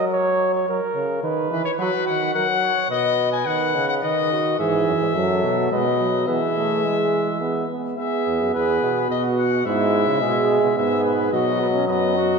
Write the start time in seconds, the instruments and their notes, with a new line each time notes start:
Already playing: trombone F#3
0.13 flugelhorn C#5
0.54 flugelhorn C#5
0.68 trombone F#3, flugelhorn A#4
0.95 trombone C#3
1.23 trombone D#3, flugelhorn B4
1.51 trombone E3, trumpet B4
1.65 trumpet C#5
1.79 trombone F#3, flugelhorn F#4, trumpet B4
2.07 trombone D#3, trumpet F#5
2.34 trombone F#3, flugelhorn A#4, trumpet F#5
2.63 flugelhorn C#5
2.90 trombone B2, flugelhorn B4, trumpet D#5
3.32 trumpet G#5
3.46 trombone D#3, trumpet F#5
3.75 trombone C#3
3.89 trumpet F#5
4.03 trombone D#3, flugelhorn B4, trumpet D#5
4.31 flugelhorn F#4
4.59 bass trombone G#2, trombone E3, flugelhorn G#4, trumpet E5
4.87 bass trombone F#2
5.01 bass trombone G#2
5.15 bass trombone F#2, trombone F#3, flugelhorn A4
5.44 bass trombone B2
5.71 bass trombone B2, trombone G#3, flugelhorn B4, trumpet D#5
6.00 trombone F#3
6.27 bass trombone E3, trombone B3, flugelhorn G#4, trumpet E5
6.56 trombone A3
6.84 trombone G#3
7.41 trombone B3
7.70 trombone B3
7.98 trombone B3, flugelhorn G#4, trumpet E5
8.27 bass trombone E2
8.41 bass trombone F#2
8.54 bass trombone E2, flugelhorn G#4, trumpet B4
8.83 bass trombone B2
9.10 bass trombone B2, flugelhorn F#4, trumpet D#5
9.38 trumpet F#5
9.66 bass trombone G#2, trombone G#3, flugelhorn E4, trumpet E5
10.08 bass trombone C#3
10.21 bass trombone B2, trombone G#3, flugelhorn G#4
10.63 bass trombone B2
10.77 bass trombone G#2, trombone B3, flugelhorn G#4, trumpet E5
11.05 trumpet B4
11.32 bass trombone B2, trombone F#3, flugelhorn F#4, trumpet D#5
11.61 flugelhorn B3
11.74 flugelhorn C#4
11.88 bass trombone F#2, flugelhorn B3, trumpet D#5
12.16 flugelhorn F#4